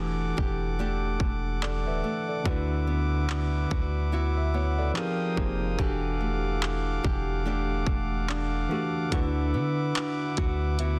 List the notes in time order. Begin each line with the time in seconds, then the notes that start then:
Already playing: E1 E3 A3 D4 F#4 G4 A4 F#5 D6
0.37 E1 G4, kick
0.79 A3 D4 G4
1.20 E1 A3, kick
1.62 D4 A4 D5, clap
1.86 D1 B4 E5
2.04 A3
2.29 A4 D5
2.44 D2 D3 D4 E4 F#4 B4 E5, kick
2.49 B4
2.87 B3
3.30 clap
3.71 D2 F#4, kick
4.12 B3 E4 F#4
4.37 B4 E5
4.54 B3 C#5 F#5
4.78 A4 D5
4.94 F3 C4 D#4 G4 G#4 A#4 F5 G5 D#6, clap
4.99 A#4
5.35 F1 F3 A#3 C4 D#4 G4 G#4, kick
5.40 C5
5.77 E1 E3 D4 F#4 G4 A4 F#5 D6, kick
5.82 A4
6.21 A3
6.63 clap
7.04 E1 G4, kick
7.45 A3 D4 G4
7.87 E1 A3, kick
8.29 D4, clap
8.69 E3 A3 D4 F#4 G4
8.74 A4
9.10 D2 D3 D4 E4 F#4 B4 E5, kick, closed hi-hat
9.15 B4
9.54 D3 B3
9.95 clap, closed hi-hat
10.37 D2 F#4, kick, closed hi-hat
10.79 B3 E4 F#4 B4 E5, closed hi-hat